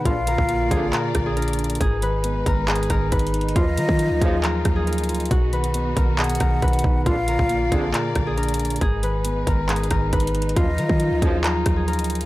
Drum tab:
HH |x-----------x-----------x-----------x-----------x-----------x-----------x--x--x--x--x--x--x--x--|x-----------x-----------x-----------x-----------x---x---x---x-----------x---x---x---x---x---x---|x-----------x-----------x-----------x-----------x-----------x-----------x--x--x--x--x--x--x--x--|x-----------x-----x-----x-----------x-----------x--x--x--x--x-----------x--x--x--x--------------|
CP |------------------------------------------------x-----------------------------------------------|------------------------------------------------x-----------------------------------------------|------------------------------------------------x-----------------------------------------------|------------------------------------------------x-----------------------------------------------|
SD |------------------------------------------------------------r-----------------------------------|------------------------------------------------------------r-----------------------------------|------------------------------------------------------------r-----------------------------------|------------------------------------------------------------r-----------------------------------|
BD |o-----------------o-----------------o-----------------------o-----------------------------------|o-----------------------------------o-----------------------o-----------o-----------------------|o-----------------o-----------------o-----------------------o-----------------------------------|o-----------------------------------o-----------------------o-----------o-----------o-----------|

HH |x-----------x-----------x-----------x-----------x-----------x-----------x--x--x--x--x--x--x--x--|x-----------x-----------x-----------x-----------x---x---x---x-----------x---x---x---x---x---x---|x-----------x-----------x-----------x-----------x-----------x-----------x--x--x--x--x--x--x-----|
CP |------------------------------------------------x-----------------------------------------------|------------------------------------------------x-----------------------------------------------|------------------------------------------------x-----------------------------------------------|
SD |------------------------------------------------------------r-----------------------------------|------------------------------------------------------------r-----------------------------------|------------------------------------------------------------r-----------------------------------|
BD |o-----------------o-----------------o-----------------------o-----------------------------------|o-----------------------------------o-----------------------o-----------o-----------------------|o-----------------o-----------------o-----------------------o-----------------------------------|